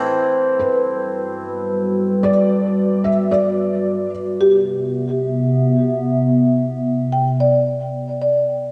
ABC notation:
X:1
M:4/4
L:1/8
Q:1/4=110
K:G
V:1 name="Felt piano"
z2 B6 | d3 e d3 z | z8 | z8 |]
V:2 name="Marimba"
z8 | z8 | G z6 z | z2 g d z2 d z |]
V:3 name="Ambient pad"
[G,FB]8- | [G,FB]8 | [C,B,e]8- | [C,B,e]8 |]